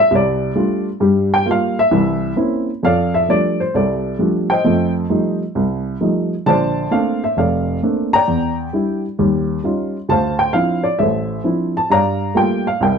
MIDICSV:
0, 0, Header, 1, 2, 480
1, 0, Start_track
1, 0, Key_signature, -1, "major"
1, 0, Tempo, 453172
1, 1071, Time_signature, 4, 2, 24, 8
1, 13752, End_track
2, 0, Start_track
2, 0, Title_t, "Upright piano"
2, 0, Program_c, 0, 0
2, 0, Note_on_c, 0, 76, 106
2, 115, Note_on_c, 0, 48, 71
2, 117, Note_off_c, 0, 76, 0
2, 117, Note_on_c, 0, 36, 72
2, 162, Note_on_c, 0, 74, 86
2, 530, Note_off_c, 0, 48, 0
2, 532, Note_off_c, 0, 36, 0
2, 588, Note_on_c, 0, 55, 56
2, 588, Note_on_c, 0, 57, 50
2, 589, Note_on_c, 0, 62, 53
2, 595, Note_on_c, 0, 65, 61
2, 898, Note_off_c, 0, 74, 0
2, 929, Note_off_c, 0, 55, 0
2, 929, Note_off_c, 0, 57, 0
2, 929, Note_off_c, 0, 62, 0
2, 932, Note_off_c, 0, 65, 0
2, 1062, Note_on_c, 0, 43, 71
2, 1066, Note_on_c, 0, 55, 77
2, 1416, Note_on_c, 0, 79, 98
2, 1484, Note_off_c, 0, 43, 0
2, 1486, Note_off_c, 0, 55, 0
2, 1542, Note_on_c, 0, 58, 55
2, 1543, Note_on_c, 0, 55, 55
2, 1549, Note_on_c, 0, 65, 63
2, 1557, Note_off_c, 0, 79, 0
2, 1597, Note_on_c, 0, 77, 92
2, 1886, Note_off_c, 0, 58, 0
2, 1887, Note_off_c, 0, 55, 0
2, 1889, Note_off_c, 0, 77, 0
2, 1890, Note_off_c, 0, 65, 0
2, 1899, Note_on_c, 0, 76, 100
2, 2026, Note_on_c, 0, 36, 78
2, 2027, Note_on_c, 0, 52, 74
2, 2446, Note_off_c, 0, 36, 0
2, 2446, Note_off_c, 0, 52, 0
2, 2481, Note_off_c, 0, 76, 0
2, 2502, Note_on_c, 0, 58, 57
2, 2507, Note_on_c, 0, 60, 53
2, 2508, Note_on_c, 0, 61, 53
2, 2514, Note_on_c, 0, 64, 62
2, 2846, Note_off_c, 0, 58, 0
2, 2849, Note_off_c, 0, 60, 0
2, 2849, Note_off_c, 0, 61, 0
2, 2853, Note_off_c, 0, 64, 0
2, 2996, Note_on_c, 0, 41, 67
2, 3014, Note_on_c, 0, 77, 100
2, 3023, Note_on_c, 0, 69, 73
2, 3028, Note_on_c, 0, 74, 70
2, 3330, Note_on_c, 0, 76, 89
2, 3337, Note_off_c, 0, 77, 0
2, 3412, Note_off_c, 0, 41, 0
2, 3478, Note_on_c, 0, 53, 52
2, 3479, Note_off_c, 0, 74, 0
2, 3482, Note_on_c, 0, 55, 45
2, 3483, Note_off_c, 0, 76, 0
2, 3486, Note_on_c, 0, 57, 47
2, 3489, Note_on_c, 0, 62, 53
2, 3495, Note_on_c, 0, 74, 88
2, 3815, Note_off_c, 0, 53, 0
2, 3816, Note_on_c, 0, 72, 74
2, 3817, Note_off_c, 0, 55, 0
2, 3817, Note_off_c, 0, 74, 0
2, 3819, Note_off_c, 0, 57, 0
2, 3821, Note_off_c, 0, 62, 0
2, 3926, Note_off_c, 0, 69, 0
2, 3965, Note_on_c, 0, 36, 65
2, 3967, Note_off_c, 0, 72, 0
2, 3980, Note_on_c, 0, 74, 76
2, 3984, Note_on_c, 0, 69, 54
2, 3986, Note_on_c, 0, 67, 52
2, 4377, Note_off_c, 0, 36, 0
2, 4414, Note_off_c, 0, 74, 0
2, 4435, Note_on_c, 0, 53, 52
2, 4440, Note_on_c, 0, 55, 49
2, 4441, Note_on_c, 0, 57, 48
2, 4442, Note_on_c, 0, 62, 57
2, 4764, Note_on_c, 0, 79, 94
2, 4774, Note_off_c, 0, 53, 0
2, 4777, Note_off_c, 0, 55, 0
2, 4777, Note_off_c, 0, 57, 0
2, 4778, Note_off_c, 0, 62, 0
2, 4779, Note_on_c, 0, 72, 69
2, 4788, Note_on_c, 0, 75, 72
2, 4887, Note_off_c, 0, 69, 0
2, 4888, Note_off_c, 0, 67, 0
2, 4919, Note_on_c, 0, 57, 64
2, 4921, Note_on_c, 0, 41, 70
2, 5208, Note_off_c, 0, 79, 0
2, 5334, Note_off_c, 0, 57, 0
2, 5336, Note_off_c, 0, 41, 0
2, 5396, Note_on_c, 0, 53, 49
2, 5398, Note_on_c, 0, 55, 46
2, 5400, Note_on_c, 0, 57, 49
2, 5401, Note_on_c, 0, 63, 56
2, 5687, Note_off_c, 0, 72, 0
2, 5692, Note_off_c, 0, 75, 0
2, 5735, Note_off_c, 0, 53, 0
2, 5736, Note_off_c, 0, 55, 0
2, 5737, Note_off_c, 0, 57, 0
2, 5738, Note_off_c, 0, 63, 0
2, 5882, Note_on_c, 0, 36, 69
2, 6297, Note_off_c, 0, 36, 0
2, 6364, Note_on_c, 0, 53, 54
2, 6364, Note_on_c, 0, 55, 47
2, 6369, Note_on_c, 0, 57, 49
2, 6370, Note_on_c, 0, 63, 56
2, 6700, Note_off_c, 0, 53, 0
2, 6700, Note_off_c, 0, 55, 0
2, 6702, Note_off_c, 0, 57, 0
2, 6703, Note_off_c, 0, 63, 0
2, 6843, Note_on_c, 0, 50, 67
2, 6845, Note_on_c, 0, 34, 64
2, 6846, Note_on_c, 0, 81, 103
2, 6870, Note_on_c, 0, 74, 73
2, 6872, Note_on_c, 0, 72, 75
2, 7258, Note_off_c, 0, 50, 0
2, 7259, Note_off_c, 0, 34, 0
2, 7320, Note_on_c, 0, 57, 57
2, 7322, Note_on_c, 0, 58, 48
2, 7325, Note_on_c, 0, 60, 49
2, 7326, Note_on_c, 0, 77, 88
2, 7329, Note_on_c, 0, 62, 59
2, 7336, Note_off_c, 0, 81, 0
2, 7655, Note_off_c, 0, 77, 0
2, 7658, Note_off_c, 0, 57, 0
2, 7660, Note_off_c, 0, 58, 0
2, 7661, Note_off_c, 0, 60, 0
2, 7663, Note_off_c, 0, 62, 0
2, 7667, Note_on_c, 0, 76, 76
2, 7772, Note_off_c, 0, 74, 0
2, 7773, Note_off_c, 0, 72, 0
2, 7804, Note_on_c, 0, 29, 69
2, 7815, Note_off_c, 0, 76, 0
2, 7816, Note_on_c, 0, 77, 80
2, 7832, Note_on_c, 0, 69, 55
2, 7832, Note_on_c, 0, 74, 56
2, 8218, Note_off_c, 0, 29, 0
2, 8254, Note_off_c, 0, 77, 0
2, 8292, Note_on_c, 0, 57, 52
2, 8294, Note_on_c, 0, 58, 49
2, 8296, Note_on_c, 0, 60, 48
2, 8298, Note_on_c, 0, 62, 58
2, 8614, Note_on_c, 0, 82, 110
2, 8621, Note_off_c, 0, 74, 0
2, 8625, Note_off_c, 0, 57, 0
2, 8626, Note_off_c, 0, 58, 0
2, 8627, Note_off_c, 0, 60, 0
2, 8628, Note_off_c, 0, 62, 0
2, 8637, Note_on_c, 0, 74, 67
2, 8639, Note_on_c, 0, 79, 74
2, 8733, Note_off_c, 0, 69, 0
2, 8768, Note_on_c, 0, 40, 68
2, 9055, Note_off_c, 0, 82, 0
2, 9181, Note_off_c, 0, 40, 0
2, 9250, Note_on_c, 0, 55, 53
2, 9253, Note_on_c, 0, 62, 46
2, 9257, Note_on_c, 0, 64, 56
2, 9537, Note_off_c, 0, 74, 0
2, 9539, Note_off_c, 0, 79, 0
2, 9584, Note_off_c, 0, 55, 0
2, 9585, Note_off_c, 0, 62, 0
2, 9587, Note_off_c, 0, 64, 0
2, 9730, Note_on_c, 0, 39, 66
2, 9733, Note_on_c, 0, 55, 63
2, 10142, Note_off_c, 0, 39, 0
2, 10143, Note_off_c, 0, 55, 0
2, 10207, Note_on_c, 0, 55, 47
2, 10213, Note_on_c, 0, 61, 48
2, 10215, Note_on_c, 0, 63, 46
2, 10218, Note_on_c, 0, 65, 55
2, 10542, Note_off_c, 0, 55, 0
2, 10545, Note_off_c, 0, 61, 0
2, 10546, Note_off_c, 0, 63, 0
2, 10547, Note_off_c, 0, 65, 0
2, 10683, Note_on_c, 0, 38, 65
2, 10693, Note_on_c, 0, 81, 100
2, 10713, Note_on_c, 0, 72, 70
2, 10714, Note_on_c, 0, 77, 68
2, 10987, Note_off_c, 0, 81, 0
2, 11005, Note_on_c, 0, 79, 88
2, 11098, Note_off_c, 0, 38, 0
2, 11138, Note_off_c, 0, 77, 0
2, 11154, Note_on_c, 0, 77, 92
2, 11162, Note_on_c, 0, 60, 46
2, 11163, Note_on_c, 0, 53, 54
2, 11164, Note_off_c, 0, 79, 0
2, 11165, Note_on_c, 0, 62, 47
2, 11170, Note_on_c, 0, 64, 56
2, 11477, Note_on_c, 0, 74, 74
2, 11489, Note_off_c, 0, 77, 0
2, 11499, Note_off_c, 0, 60, 0
2, 11500, Note_off_c, 0, 53, 0
2, 11501, Note_off_c, 0, 62, 0
2, 11503, Note_off_c, 0, 64, 0
2, 11612, Note_off_c, 0, 72, 0
2, 11636, Note_on_c, 0, 76, 74
2, 11639, Note_off_c, 0, 74, 0
2, 11644, Note_on_c, 0, 33, 66
2, 11675, Note_on_c, 0, 69, 57
2, 11675, Note_on_c, 0, 72, 54
2, 12057, Note_off_c, 0, 33, 0
2, 12082, Note_off_c, 0, 76, 0
2, 12116, Note_on_c, 0, 53, 51
2, 12121, Note_on_c, 0, 60, 45
2, 12121, Note_on_c, 0, 62, 48
2, 12127, Note_on_c, 0, 64, 56
2, 12455, Note_off_c, 0, 53, 0
2, 12458, Note_off_c, 0, 60, 0
2, 12458, Note_off_c, 0, 62, 0
2, 12461, Note_off_c, 0, 64, 0
2, 12466, Note_on_c, 0, 81, 89
2, 12572, Note_off_c, 0, 69, 0
2, 12572, Note_off_c, 0, 72, 0
2, 12605, Note_on_c, 0, 43, 66
2, 12613, Note_off_c, 0, 81, 0
2, 12621, Note_on_c, 0, 82, 102
2, 12634, Note_on_c, 0, 74, 71
2, 12635, Note_on_c, 0, 77, 70
2, 13017, Note_off_c, 0, 43, 0
2, 13077, Note_on_c, 0, 55, 54
2, 13079, Note_on_c, 0, 57, 49
2, 13080, Note_on_c, 0, 58, 52
2, 13084, Note_on_c, 0, 65, 60
2, 13101, Note_off_c, 0, 82, 0
2, 13103, Note_on_c, 0, 79, 89
2, 13406, Note_off_c, 0, 77, 0
2, 13415, Note_off_c, 0, 55, 0
2, 13416, Note_off_c, 0, 57, 0
2, 13416, Note_off_c, 0, 58, 0
2, 13418, Note_off_c, 0, 65, 0
2, 13421, Note_off_c, 0, 79, 0
2, 13422, Note_on_c, 0, 77, 82
2, 13530, Note_off_c, 0, 74, 0
2, 13563, Note_on_c, 0, 36, 70
2, 13570, Note_off_c, 0, 77, 0
2, 13587, Note_on_c, 0, 79, 81
2, 13598, Note_on_c, 0, 70, 57
2, 13599, Note_on_c, 0, 76, 54
2, 13752, Note_off_c, 0, 36, 0
2, 13752, Note_off_c, 0, 70, 0
2, 13752, Note_off_c, 0, 76, 0
2, 13752, Note_off_c, 0, 79, 0
2, 13752, End_track
0, 0, End_of_file